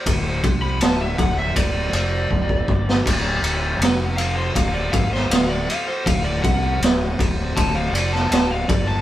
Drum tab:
CC |----------------|x---------------|----------------|
RD |x-x-x-x-x-x-----|x-x-x-x-x-x-x-x-|x-x-x-x-x-x-x-x-|
SD |----o----------o|----o------oo---|----o------oo---|
BD |o-o---o-o---ooo-|o-------o-o-----|o-o---o-o-----o-|